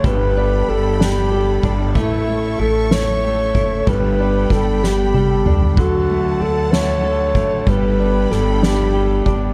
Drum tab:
RD |--x-x-x-x-x-|x-x-x---x---|x-x-x-------|x-x-x-x-x-x-|
SD |------o-----|------o-----|----o-o-----|------o-----|
T1 |------------|------------|--------o---|------------|
T2 |------------|------------|----------o-|------------|
FT |------------|------------|-----------o|------------|
BD |o---------o-|o---------o-|o---o-------|o---------o-|

RD |--x-x-x-x-x-|
SD |----o-o-----|
T1 |------------|
T2 |------------|
FT |------------|
BD |o---------o-|